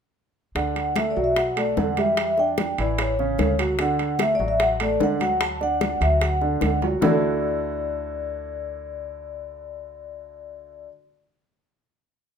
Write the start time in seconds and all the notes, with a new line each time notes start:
0.55 D2 D3 D4 F#5, high bongo, high conga, high timbale
0.76 high bongo, high conga, high timbale
0.96 A3 A4 E5, high bongo, high conga, high timbale
1.10 D5
1.16 B1 F#3 F#4, high conga
1.24 E5
1.36 F#5, high bongo, high conga, high timbale
1.56 A3 A4 D5, high bongo, high conga, high timbale
1.77 E2 D3 D4 F#5, high bongo, low bongo, high conga, low timbale
1.97 G3 G4 E5, high bongo, high conga, high timbale
2.17 E5, high bongo, high conga, high timbale
2.38 D4 D5 G5, high bongo, high conga
2.58 high bongo, high conga, high timbale
2.78 A1 E3 E4 D5, high conga, high timbale
2.98 C#5, high bongo, high conga, high timbale
3.19 C#3 C#4, high bongo, high conga
3.38 D2, high bongo, low bongo, high conga, high timbale, low timbale
3.59 F#3 F#4, high bongo, high timbale
3.79 D3 D4 F#5, high bongo, high conga, high timbale
3.99 high bongo, high conga, high timbale
4.19 A3 A4 E5, high bongo, high conga, high timbale
4.35 D5
4.39 A1 F#3 F#4, high conga
4.48 E5
4.60 F#5, high bongo, high conga, high timbale
4.80 A3 A4 D5, high bongo, high conga, high timbale
5.00 D2 D3 D4 F#5, high bongo, low bongo, high conga, low timbale
5.20 F#3 F#4 F#5, high bongo, high conga, high timbale
5.41 A5, high bongo, high conga, high timbale
5.61 D4 D5 F#5, high bongo, high conga
5.81 high bongo, high conga, high timbale
6.00 D2 F#3 F#4 E5, high conga, high timbale
6.21 F#5, high bongo, high conga, high timbale
6.41 D3 D4, high bongo, high conga
6.61 D2, high bongo, low bongo, high conga, high timbale, low timbale
6.82 F#3 F#4, high bongo, high conga, high timbale
7.01 D2 D3 A3 D4 E4 F#4 D5, low bongo, low conga, low timbale